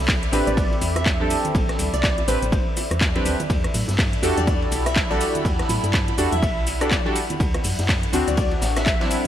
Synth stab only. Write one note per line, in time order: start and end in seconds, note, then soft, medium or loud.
0.32 1.17 C4 loud
0.32 1.17 D4 medium
0.32 1.17 G4 medium
0.32 1.17 B4 loud
1.20 2.25 C4 medium
1.20 2.25 D4 medium
1.20 2.26 G4 medium
1.20 2.26 A4 loud
2.28 2.43 C4 medium
2.28 2.43 D4 medium
2.28 2.43 G4 medium
2.28 2.44 B4 medium
3.15 3.36 C4 loud
3.15 3.37 D4 medium
3.15 3.37 G4 medium
3.15 3.37 B4 loud
4.22 5.07 D4 loud
4.22 5.07 F#4 medium
4.22 5.07 G4 medium
4.22 5.07 A4 loud
5.10 6.15 D4 medium
5.10 6.16 F#4 medium
5.10 6.16 G4 medium
5.10 6.16 A4 loud
6.18 6.33 D4 medium
6.18 6.34 F#4 medium
6.18 6.34 G4 medium
6.18 6.34 A4 medium
6.81 6.93 D4 medium
6.81 6.93 F#4 medium
6.81 6.93 G4 medium
6.81 6.93 A4 medium
7.05 7.17 D4 medium
7.05 7.17 F#4 medium
7.05 7.17 G4 medium
7.05 7.17 A4 loud
8.12 8.97 C4 loud
8.12 8.97 D4 medium
8.12 8.98 F#4 loud
9.00 9.27 C4 medium
9.00 9.27 D4 medium
9.00 9.27 E4 loud